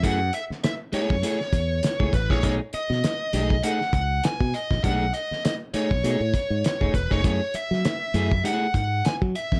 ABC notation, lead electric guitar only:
X:1
M:4/4
L:1/16
Q:"Swing 16ths" 1/4=100
K:Bmix
V:1 name="Lead electric guitar"
f2 e2 e2 c8 B c | c2 d6 f2 f2 g2 d2 | f2 d2 d2 c8 B c | c2 e6 f2 f2 g2 e2 |]